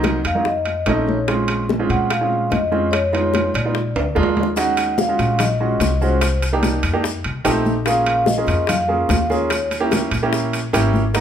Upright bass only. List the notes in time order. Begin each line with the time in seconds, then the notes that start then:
Already playing: C2
0.24 F2
0.86 A#1
1.89 A#2
2.51 F2
3.54 A#1
3.95 D2
4.16 D#2
5.19 A#1
5.80 C2
6.83 F2
7.25 C2
7.45 A#1
8.47 F2
9.10 D#2
10.11 A#1
10.74 G#1